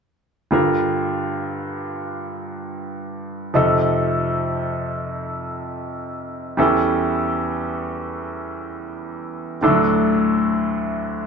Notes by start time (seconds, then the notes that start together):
0.51 G2 D3 G3 F4 A#4
3.54 F2 C3 F3 D#4 A4
6.57 E2 E3 G3 C#4 A4
9.61 D2 A2 D#3 D4 A4
9.68 F#3